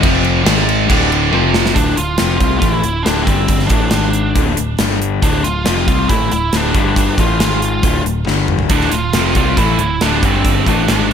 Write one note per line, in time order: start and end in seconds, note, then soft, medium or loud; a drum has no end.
0.02 0.43 F1 loud
0.02 0.46 F2 loud
0.02 0.46 C3 loud
0.02 0.47 F3 loud
0.02 kick loud
0.02 crash medium
0.24 crash medium
0.46 0.87 G#1 loud
0.46 0.89 G#2 medium
0.46 0.89 D#3 medium
0.46 0.90 G#3 medium
0.46 snare loud
0.46 crash medium
0.68 crash medium
0.90 1.30 D1 loud
0.90 1.32 D2 medium
0.90 1.33 A2 loud
0.90 1.33 D3 loud
0.90 kick loud
0.90 crash medium
1.12 crash medium
1.33 1.73 F1 medium
1.33 1.75 F2 medium
1.33 1.75 C3 medium
1.33 1.76 F3 loud
1.33 high tom medium
1.54 snare loud
1.66 snare medium
1.75 1.96 D1 medium
1.75 1.95 D2 loud
1.75 1.96 A2 loud
1.75 1.97 D3 medium
1.75 1.98 D4 loud
1.75 kick medium
1.75 closed hi-hat medium
1.96 2.18 D1 medium
1.96 2.15 D2 medium
1.96 2.15 A2 medium
1.96 2.36 F4 medium
1.96 closed hi-hat medium
2.18 2.39 F1 medium
2.18 2.39 F2 medium
2.18 2.38 C3 medium
2.18 2.40 F3 medium
2.18 snare loud
2.18 closed hi-hat medium
2.37 2.61 C2 medium
2.37 2.60 C3 loud
2.37 2.60 G3 loud
2.37 2.61 C4 loud
2.37 2.59 F4 medium
2.37 kick medium
2.37 closed hi-hat medium
2.59 2.83 A1 medium
2.59 2.82 A2 loud
2.59 2.83 E3 medium
2.59 2.83 A3 loud
2.59 2.70 F4 loud
2.59 kick loud
2.59 closed hi-hat medium
2.70 3.06 E4 loud
2.83 3.05 D1 medium
2.83 3.01 D2 medium
2.83 3.01 A2 medium
2.83 closed hi-hat medium
3.03 3.26 D1 medium
3.03 3.26 D2 medium
3.03 3.26 A2 medium
3.03 3.26 D3 medium
3.03 3.23 D4 medium
3.03 snare loud
3.03 closed hi-hat medium
3.23 3.68 G1 medium
3.23 3.69 G2 medium
3.23 3.69 D3 medium
3.23 3.67 C4 medium
3.23 kick loud
3.23 closed hi-hat medium
3.28 3.70 G3 medium
3.48 kick loud
3.48 closed hi-hat medium
3.60 snare soft
3.67 3.91 A1 medium
3.67 3.91 A2 medium
3.67 3.92 E3 medium
3.67 3.93 A3 loud
3.67 3.88 D4 medium
3.67 kick loud
3.67 closed hi-hat medium
3.90 4.33 G#1 medium
3.90 4.34 G#2 medium
3.90 4.35 D#3 medium
3.90 4.36 G#3 medium
3.90 4.53 D4 medium
3.90 snare loud
3.90 closed hi-hat medium
4.13 closed hi-hat medium
4.35 4.56 D1 medium
4.35 4.56 D2 medium
4.35 4.56 A2 medium
4.35 4.57 D3 loud
4.35 kick medium
4.35 closed hi-hat medium
4.57 4.78 D1 medium
4.57 4.75 D2 medium
4.57 4.75 A2 medium
4.57 closed hi-hat medium
4.79 5.20 G1 medium
4.79 5.22 G2 medium
4.79 5.22 D3 medium
4.79 5.22 G3 medium
4.79 snare loud
4.79 closed hi-hat medium
5.02 closed hi-hat medium
5.22 5.43 D1 medium
5.22 5.43 D2 loud
5.22 5.43 A2 medium
5.22 5.45 D3 loud
5.22 5.45 D4 medium
5.22 kick loud
5.22 closed hi-hat medium
5.44 5.66 D1 medium
5.44 5.62 D2 medium
5.44 5.62 A2 medium
5.44 5.87 F4 loud
5.44 closed hi-hat medium
5.65 5.87 F1 medium
5.65 5.87 F2 medium
5.65 5.86 C3 medium
5.65 5.87 F3 medium
5.65 snare loud
5.65 closed hi-hat medium
5.87 6.08 C2 medium
5.87 6.09 C3 loud
5.87 6.09 G3 medium
5.87 6.10 C4 loud
5.87 6.09 F4 medium
5.87 kick medium
5.87 closed hi-hat medium
6.09 6.30 A1 medium
6.09 6.31 A2 medium
6.09 6.31 E3 loud
6.09 6.32 A3 loud
6.09 6.31 E4 medium
6.09 kick loud
6.09 closed hi-hat medium
6.31 6.52 D1 medium
6.31 6.50 D2 medium
6.31 6.50 A2 medium
6.31 6.55 E4 medium
6.31 closed hi-hat medium
6.53 6.73 D1 medium
6.53 6.75 D2 medium
6.53 6.76 A2 medium
6.53 6.76 D3 medium
6.53 6.76 D4 medium
6.53 snare loud
6.53 closed hi-hat medium
6.75 7.15 G1 medium
6.75 7.18 G2 medium
6.75 7.19 D3 medium
6.75 7.18 G3 medium
6.75 7.21 D4 medium
6.75 kick loud
6.75 closed hi-hat medium
6.96 kick loud
6.96 closed hi-hat medium
7.18 7.39 A1 medium
7.18 7.40 A2 medium
7.18 7.41 E3 medium
7.18 7.41 A3 medium
7.18 7.40 F4 medium
7.18 kick loud
7.18 closed hi-hat medium
7.40 7.81 G#1 medium
7.40 7.83 G#2 medium
7.40 7.84 D#3 medium
7.40 7.84 G#3 medium
7.40 8.02 F4 medium
7.40 snare loud
7.40 closed hi-hat medium
7.62 closed hi-hat medium
7.83 8.04 D1 medium
7.83 8.04 D2 medium
7.83 8.05 A2 medium
7.83 8.05 D3 medium
7.83 kick loud
7.83 closed hi-hat medium
8.05 8.26 D1 medium
8.05 8.23 D2 medium
8.05 8.23 A2 medium
8.05 closed hi-hat medium
8.26 8.67 G1 medium
8.26 8.70 G2 medium
8.26 8.70 D3 medium
8.26 8.70 G3 medium
8.26 snare medium
8.48 mid tom medium
8.59 floor tom medium
8.69 8.90 D1 medium
8.69 8.91 D2 medium
8.69 8.92 A2 medium
8.69 8.92 D3 loud
8.69 8.93 D4 medium
8.69 kick loud
8.69 closed hi-hat medium
8.81 snare soft
8.91 9.12 D1 medium
8.91 9.10 D2 medium
8.91 9.10 A2 medium
8.91 9.36 F4 medium
8.91 closed hi-hat medium
9.13 9.34 F1 medium
9.13 9.35 F2 medium
9.13 9.36 C3 medium
9.13 9.36 F3 medium
9.13 snare loud
9.13 closed hi-hat medium
9.35 9.56 C2 medium
9.35 9.57 C3 medium
9.35 9.57 G3 loud
9.35 9.58 C4 loud
9.35 9.57 F4 medium
9.35 kick medium
9.35 closed hi-hat medium
9.57 9.78 A1 medium
9.57 9.79 A2 medium
9.57 9.79 E3 loud
9.57 9.79 A3 loud
9.57 10.03 E4 medium
9.57 kick loud
9.57 closed hi-hat medium
9.79 10.00 D1 medium
9.79 9.97 D2 medium
9.79 9.97 A2 medium
9.79 closed hi-hat medium
10.01 10.22 D1 medium
10.01 10.22 D2 medium
10.01 10.23 A2 medium
10.01 10.22 D3 loud
10.01 10.24 D4 medium
10.01 snare loud
10.01 closed hi-hat medium
10.23 10.63 G1 medium
10.23 10.66 G2 medium
10.23 10.66 D3 medium
10.23 10.67 G3 medium
10.23 10.68 C4 medium
10.23 kick loud
10.23 closed hi-hat medium
10.45 kick loud
10.45 closed hi-hat medium
10.66 10.87 A1 loud
10.66 10.88 A2 medium
10.66 10.88 E3 medium
10.66 10.89 A3 loud
10.66 10.88 D4 medium
10.66 kick medium
10.66 closed hi-hat medium
10.88 11.13 G#1 medium
10.88 11.13 G#2 medium
10.88 11.13 D#3 medium
10.88 11.13 G#3 medium
10.88 11.13 D4 medium
10.88 snare loud
10.88 closed hi-hat medium